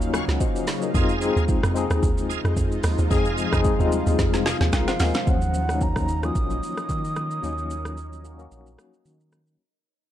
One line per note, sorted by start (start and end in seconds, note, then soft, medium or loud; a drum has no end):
0.00 0.22 D#2 loud
0.00 0.91 C#3 medium
0.00 0.91 F#3 medium
0.00 0.97 F#3 loud
0.00 0.91 A#3 medium
0.00 0.96 A#3 medium
0.00 0.97 C#4 medium
0.00 0.91 D#4 medium
0.00 0.95 D#4 loud
0.00 0.96 F4 loud
0.00 0.91 F5 medium
0.00 shaker medium
0.13 0.25 F#4 medium
0.13 0.25 C#5 medium
0.13 0.25 F5 medium
0.13 0.22 G#5 medium
0.13 cross-stick loud
0.13 shaker medium
0.23 0.39 F#5 medium
0.28 0.39 C#2 medium
0.28 snare medium
0.28 shaker soft
0.40 0.67 F#4 medium
0.40 0.66 C5 medium
0.40 0.81 D#5 medium
0.40 kick medium
0.40 shaker medium
0.56 shaker medium
0.67 0.82 G#4 medium
0.67 0.82 C#5 medium
0.67 snare medium
0.67 open hi-hat medium
0.67 shaker medium
0.82 1.08 A#4 medium
0.82 1.08 D#5 medium
0.82 shaker medium
0.93 1.30 F2 loud
0.93 5.23 C3 medium
0.93 5.23 F3 medium
0.93 1.16 G#3 medium
0.93 5.23 G#3 medium
0.93 1.17 C4 medium
0.93 5.23 D#4 medium
0.93 1.17 D#4 medium
0.93 5.23 F4 medium
0.93 1.18 F4 loud
0.93 1.45 G#4 medium
0.93 1.45 D#5 medium
0.93 1.45 F5 loud
0.93 kick loud
0.93 shaker medium
1.09 shaker soft
1.20 1.65 G#3 medium
1.20 1.66 C4 medium
1.20 1.66 D#4 medium
1.20 1.67 G#4 loud
1.20 shaker medium
1.36 1.60 D#2 medium
1.36 shaker medium
1.48 kick medium
1.48 shaker medium
1.63 1.87 F2 medium
1.63 cross-stick loud
1.63 shaker medium
1.74 2.62 G#3 medium
1.74 2.62 C4 medium
1.74 2.63 D#4 medium
1.74 2.64 G#4 loud
1.74 shaker medium
1.90 2.01 D#2 loud
1.90 cross-stick loud
1.90 shaker medium
2.03 2.39 D#2 loud
2.03 kick loud
2.03 shaker medium
2.18 shaker medium
2.29 2.41 G#4 medium
2.29 2.41 D#5 medium
2.29 2.41 F5 medium
2.29 shaker medium
2.45 2.55 F2 loud
2.45 cross-stick medium
2.45 shaker soft
2.57 2.80 F2 loud
2.57 kick medium
2.57 shaker medium
2.72 shaker medium
2.83 2.96 D#2 loud
2.83 cross-stick loud
2.83 open hi-hat medium
2.83 shaker medium
2.98 3.09 D#2 loud
2.98 shaker medium
3.09 3.47 F2 loud
3.09 3.43 G#3 medium
3.09 3.44 C4 medium
3.09 3.44 D#4 medium
3.09 3.61 G#4 loud
3.09 3.45 G#4 loud
3.09 3.61 D#5 medium
3.09 3.61 F5 loud
3.09 kick loud
3.09 shaker medium
3.25 shaker medium
3.38 shaker medium
3.51 3.76 F2 medium
3.51 3.73 G#3 loud
3.51 3.74 C4 medium
3.51 3.74 D#4 medium
3.51 3.75 G#4 loud
3.51 kick loud
3.51 cross-stick loud
3.51 shaker medium
3.64 kick medium
3.64 shaker medium
3.78 4.03 D#2 medium
3.78 3.85 G3 medium
3.78 4.65 C4 medium
3.78 4.66 D#4 medium
3.78 4.47 F4 loud
3.78 shaker medium
3.85 4.68 G#3 medium
3.92 shaker medium
4.07 4.17 D#2 medium
4.07 shaker medium
4.19 4.55 F2 loud
4.19 kick loud
4.19 snare medium
4.19 shaker medium
4.34 snare medium
4.34 shaker medium
4.46 4.57 G#4 medium
4.46 4.57 D#5 medium
4.46 4.71 F5 medium
4.46 4.58 F5 medium
4.46 snare medium
4.46 shaker medium
4.61 4.71 D#2 medium
4.61 snare medium
4.61 shaker soft
4.73 4.86 C2 loud
4.73 4.87 F4 medium
4.73 4.87 A#4 medium
4.73 5.30 F5 medium
4.73 4.98 A#5 medium
4.73 kick medium
4.73 snare loud
4.73 shaker medium
4.88 5.00 F4 medium
4.88 4.99 C5 medium
4.88 snare medium
4.88 shaker medium
5.00 5.13 D#2 loud
5.00 5.14 A#4 medium
5.00 5.14 D#5 medium
5.00 5.25 G#5 medium
5.00 snare loud
5.00 open hi-hat medium
5.00 shaker medium
5.14 5.41 C5 medium
5.14 5.41 F5 medium
5.14 snare loud
5.14 shaker medium
5.26 6.31 D#2 loud
5.26 5.61 F3 medium
5.26 5.59 F#3 medium
5.26 5.60 A#3 medium
5.26 5.60 C#4 medium
5.26 9.56 D#4 medium
5.26 9.56 A#4 medium
5.26 9.56 C#5 medium
5.26 9.56 D#5 medium
5.26 5.84 F#5 loud
5.26 kick loud
5.26 shaker medium
5.42 shaker soft
5.54 shaker medium
5.68 6.10 F#3 medium
5.68 6.11 A#3 medium
5.68 6.11 C#4 medium
5.68 6.12 D#4 medium
5.68 cross-stick medium
5.68 shaker medium
5.81 6.26 A#5 loud
5.81 kick medium
5.81 shaker medium
5.96 kick medium
5.96 cross-stick medium
5.96 shaker medium
6.08 shaker medium
6.21 6.28 F3 medium
6.21 7.09 A#3 medium
6.21 7.09 C#4 medium
6.21 7.10 F4 medium
6.21 9.06 D#6 loud
6.21 cross-stick medium
6.21 shaker medium
6.28 7.11 F#3 medium
6.35 6.61 A#1 loud
6.35 kick loud
6.35 shaker medium
6.50 shaker medium
6.63 shaker medium
6.77 cross-stick medium
6.77 shaker soft
6.89 7.41 D#3 medium
6.89 kick medium
6.89 shaker medium
7.04 shaker medium
7.16 cross-stick medium
7.16 shaker medium
7.31 shaker medium
7.42 8.47 D#2 loud
7.42 8.08 F#3 medium
7.42 8.09 A#3 medium
7.42 8.10 C#4 medium
7.42 8.10 D#4 loud
7.42 shaker medium
7.58 shaker soft
7.70 shaker medium
7.85 cross-stick medium
7.85 shaker medium
7.97 shaker medium
8.13 shaker medium
8.23 8.36 F#3 medium
8.23 8.36 A#3 medium
8.23 8.37 C#4 medium
8.23 8.37 F#4 medium
8.23 shaker medium
8.38 9.24 F#3 medium
8.38 9.25 A#3 medium
8.38 9.26 C#4 medium
8.38 9.26 F#4 medium
8.38 shaker medium
8.51 8.77 A#1 loud
8.51 shaker medium
8.66 shaker medium
8.78 cross-stick medium
8.78 shaker medium
8.94 shaker soft
9.05 9.57 D#3 medium
9.05 shaker medium
9.20 shaker medium
9.32 cross-stick medium
9.32 shaker medium
9.47 shaker medium